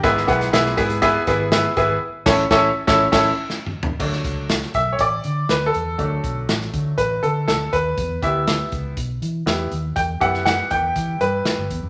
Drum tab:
CC |------------------------------------------------|------x--------------------x--------------------|x-----------------------------------------------|------------------------------------------------|
HH |x-----x--x--x-----x--x--x-----x-----x-----x-----|------------------------------------------------|------x-----x-----x-----x-----x-----x-----x-----|x-----x-----x-----x-----x-----x-----x-----x-----|
SD |---o-----o--o--o--------------------o-----------|------o-----o--------o-----o--------o-----------|---o--------o--o--------------------o-----------|------------o--o--------------------o-----------|
T2 |------------------------------------------------|----------------------------------------o-------|------------------------------------------------|------------------------------------------------|
FT |------------------------------------------------|--------------------------------------------o---|------------------------------------------------|------------------------------------------------|
BD |o-----o-----------o-----o-----o-----------o-----|------o-----o--------o-----o--------------------|o-----o-----------o-----o-----------------------|o-----o-----------o-----o-----------------o-----|

CC |------------------------------------------------|------------------------------------------------|
HH |x-----x-----x-----x-----x-----x-----x-----x-----|x-----x-----x-----x-----x-----x-----x-----x-----|
SD |------------o-----------------------o-----------|---------o--o-----------------------o-----------|
T2 |------------------------------------------------|------------------------------------------------|
FT |------------------------------------------------|------------------------------------------------|
BD |o-----o-----------o-----o-----------------------|o-----o-----------o-----o-----------------o-----|